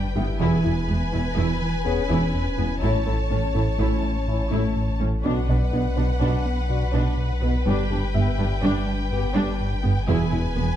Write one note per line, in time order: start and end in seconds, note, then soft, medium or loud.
0.00 0.42 G1 medium
0.00 0.36 B4 soft
0.00 0.37 G5 medium
0.15 0.24 G1 medium
0.15 0.30 G2 medium
0.15 0.24 G2 medium
0.15 0.25 B3 medium
0.15 1.57 E4 soft
0.15 0.31 G4 medium
0.15 1.57 E5 medium
0.39 2.84 E1 medium
0.39 0.49 E1 medium
0.39 0.54 E2 medium
0.39 0.48 E2 medium
0.39 0.55 E3 medium
0.39 0.56 B3 medium
0.39 0.63 E4 medium
0.39 0.56 G#4 medium
0.39 2.79 B4 medium
0.39 2.78 G#5 medium
0.64 0.73 E1 medium
0.64 0.72 E2 medium
0.64 0.79 E2 medium
0.64 0.79 E4 medium
0.64 0.72 E4 soft
0.88 0.97 E1 soft
0.88 0.96 E2 soft
0.88 1.03 E2 medium
0.88 1.04 G#3 medium
0.88 0.97 B3 soft
1.13 1.21 E1 medium
1.13 1.21 E2 medium
1.13 1.28 E2 medium
1.13 1.27 E4 soft
1.13 1.21 E4 soft
1.37 1.45 E1 medium
1.37 1.45 E2 medium
1.37 1.51 E2 medium
1.37 1.52 E3 medium
1.37 1.60 E4 medium
1.62 1.76 E3 medium
1.84 2.00 E2 medium
1.84 2.02 B3 medium
1.84 3.26 C#4 soft
1.84 2.02 G#4 medium
1.84 3.27 C#5 medium
2.09 2.18 E1 medium
2.09 2.17 E2 medium
2.09 2.24 E2 medium
2.09 2.25 E3 medium
2.09 2.32 E4 medium
2.34 2.49 E2 medium
2.58 2.66 E1 soft
2.58 2.73 E2 medium
2.58 2.67 E2 soft
2.58 2.66 B3 soft
2.58 2.73 E4 medium
2.81 5.26 A1 medium
2.81 2.90 A1 soft
2.81 2.97 A2 medium
2.81 2.91 A2 medium
2.81 2.97 A3 medium
2.81 2.98 C#4 soft
2.81 2.99 E4 soft
2.81 3.05 E4 medium
2.81 5.01 C#5 soft
2.81 5.00 A5 soft
3.07 3.15 A1 soft
3.07 3.21 A2 medium
3.07 3.15 A2 soft
3.07 3.15 E4 soft
3.07 3.21 A4 soft
3.31 3.39 A1 soft
3.31 3.39 A2 soft
3.31 3.46 A2 soft
3.31 3.45 C#4 medium
3.31 3.39 C#4 soft
3.55 3.63 A1 soft
3.55 3.63 A2 soft
3.55 3.69 A2 medium
3.55 3.63 E4 soft
3.55 3.69 A4 soft
3.78 3.87 A1 medium
3.78 3.87 A2 medium
3.78 3.94 A2 medium
3.78 3.93 A3 medium
3.78 5.21 C#4 soft
3.78 4.01 E4 medium
3.78 5.21 C#5 soft
4.03 4.17 A3 medium
4.26 4.42 A2 medium
4.26 4.44 C#4 soft
4.26 4.43 E4 soft
4.51 4.60 A1 medium
4.51 4.60 A2 medium
4.51 4.66 A2 medium
4.51 4.66 A3 medium
4.51 4.74 E4 medium
4.75 4.90 A2 soft
5.00 5.08 A1 soft
5.00 5.15 A2 medium
5.00 5.09 A2 soft
5.00 5.08 C#4 soft
5.00 5.15 A4 medium
5.24 7.68 B1 medium
5.24 5.33 B1 medium
5.24 5.39 B2 medium
5.24 5.33 B2 medium
5.24 5.39 B3 medium
5.24 5.46 D4 medium
5.24 5.41 D4 soft
5.24 5.41 F#4 soft
5.24 10.04 B4 soft
5.24 7.62 F#5 soft
5.48 5.57 B1 soft
5.48 5.63 B2 medium
5.48 5.58 B2 soft
5.48 5.56 D4 soft
5.48 5.63 B4 medium
5.48 6.90 D5 soft
5.73 5.81 B1 soft
5.73 5.87 B2 soft
5.73 5.81 B2 soft
5.73 5.81 B3 soft
5.73 5.87 D4 medium
5.97 6.05 B1 soft
5.97 6.12 B2 medium
5.97 6.06 B2 soft
5.97 6.05 D4 soft
5.97 6.11 B4 medium
6.21 6.29 B1 medium
6.21 6.36 B2 medium
6.21 6.30 B2 medium
6.21 6.35 B3 medium
6.21 6.43 D4 medium
6.46 6.60 B3 medium
6.69 6.84 B2 medium
6.69 6.86 D4 soft
6.69 6.86 F#4 soft
6.93 7.01 B1 medium
6.93 7.08 B2 medium
6.93 7.02 B2 medium
6.93 7.09 B3 medium
6.93 7.16 D4 medium
7.17 7.32 B2 medium
7.42 7.50 B1 soft
7.42 7.50 B2 soft
7.42 7.56 B2 medium
7.42 7.50 B3 soft
7.42 7.57 B4 medium
7.66 7.75 G1 medium
7.66 10.10 G1 medium
7.66 7.74 G2 medium
7.66 7.81 G2 medium
7.66 7.81 G3 medium
7.66 7.83 B3 soft
7.66 7.89 D4 medium
7.66 7.83 G4 medium
7.66 10.05 G5 medium
7.90 7.99 G1 soft
7.90 8.04 G2 medium
7.90 7.98 G2 soft
7.90 7.99 D4 soft
7.90 8.05 G4 medium
8.14 8.24 G1 soft
8.14 8.29 G2 medium
8.14 8.22 G2 soft
8.14 8.23 B3 soft
8.14 8.29 B3 medium
8.14 9.56 E5 medium
8.38 8.48 G1 soft
8.38 8.53 G2 medium
8.38 8.47 G2 soft
8.38 8.47 D4 soft
8.38 8.53 G4 medium
8.62 8.72 G1 medium
8.62 8.77 G2 medium
8.62 8.71 G2 medium
8.62 8.78 G3 medium
8.62 8.86 D4 medium
8.86 9.01 G3 medium
9.11 9.26 G2 medium
9.11 9.28 B3 medium
9.11 9.28 G4 medium
9.35 9.44 G1 medium
9.35 9.50 G2 medium
9.35 9.43 G2 medium
9.35 9.50 G3 medium
9.35 9.58 D4 medium
9.61 9.75 G2 medium
9.84 9.92 G1 medium
9.84 9.92 G2 medium
9.84 9.99 G2 medium
9.84 9.92 B3 medium
9.84 9.99 G4 medium
10.08 10.16 E1 medium
10.08 10.76 E1 medium
10.08 10.16 E2 medium
10.08 10.24 E2 medium
10.08 10.23 E3 medium
10.08 10.25 B3 medium
10.08 10.30 E4 medium
10.08 10.25 G#4 medium
10.08 10.76 B4 medium
10.08 10.76 G#5 medium
10.32 10.41 E1 medium
10.32 10.40 E2 medium
10.32 10.47 E2 medium
10.32 10.40 E4 medium
10.32 10.47 E4 medium
10.56 10.64 E1 medium
10.56 10.65 E2 medium
10.56 10.71 E2 medium
10.56 10.71 G#3 medium
10.56 10.64 B3 medium